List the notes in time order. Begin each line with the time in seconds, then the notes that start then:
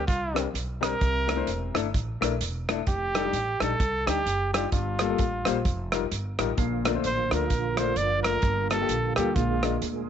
0.08 C2 F4, kick, closed hi-hat
0.34 G3 C4 D4 A#4, cross-stick, closed hi-hat
0.54 B1, closed hi-hat
0.81 G3 C4 D4 A#4, cross-stick, closed hi-hat
1.01 C2 C3, kick, closed hi-hat
1.27 A3 D4 E4 A#4, cross-stick, closed hi-hat
1.36 A3 D4 E4 C5
1.47 E1, closed hi-hat
1.74 G1 A3 D4 E4 A4, cross-stick, closed hi-hat
1.94 A1, kick, closed hi-hat
2.21 A#1 A3 D4 E4 A#4, cross-stick, closed hi-hat
2.41 E1, closed hi-hat
2.69 A3 D4 E4 A4, cross-stick, closed hi-hat
2.87 F1 G4, kick, closed hi-hat
3.15 G3 D4 D#4 A4, cross-stick, closed hi-hat
3.24 G3 D4 D#4 G4
3.33 A1, closed hi-hat
3.60 A#1 G3 D4 D#4 A4, cross-stick, closed hi-hat
3.80 C2, kick, closed hi-hat
4.06 D2 G3 D4 D#4 G4, cross-stick, closed hi-hat
4.26 F#1, closed hi-hat
4.54 G3 D4 D#4 F4 G4, cross-stick, closed hi-hat
4.72 G1 G2 F4, kick, closed hi-hat
4.99 G3 A#3 F4 A4, cross-stick, closed hi-hat
5.10 G3 A#3 F4 A4
5.18 A1, kick, closed hi-hat
5.45 A#1 G3 A#3 F4 C5, cross-stick, closed hi-hat
5.65 F1, kick, closed hi-hat
5.92 G3 D#4 F4 A#4, cross-stick, closed hi-hat
6.11 G1, closed hi-hat
6.39 A1 G3 D#4 F4 A#4, cross-stick, closed hi-hat
6.57 A#1 A#2 D3 F3 A#3 F4, kick, closed hi-hat
6.85 A3 D4 F4 A#4, cross-stick, closed hi-hat
6.94 A3 D4 F4 C5
7.04 A1 C5, closed hi-hat
7.31 D2 A3 D4 F4 A#4, cross-stick, closed hi-hat
7.50 A#1, kick, closed hi-hat
7.77 A3 D4 F4 A#4 C5, cross-stick, closed hi-hat
7.96 F#1 D5, closed hi-hat
8.23 A3 D4 F4 A#4, cross-stick, closed hi-hat
8.42 G1 G2 G3, kick, closed hi-hat
8.70 G3 A#3 F4 A4, cross-stick, closed hi-hat
8.81 G3 A#3 F4 G4
8.88 A#1, closed hi-hat
9.16 D2 G3 A#3 F4 G4 A4, cross-stick, closed hi-hat
9.35 A#1 A#2 G#3 F4 G#4, kick, closed hi-hat
9.63 G#3 D4 F4 A#4, cross-stick, closed hi-hat
9.82 D2, closed hi-hat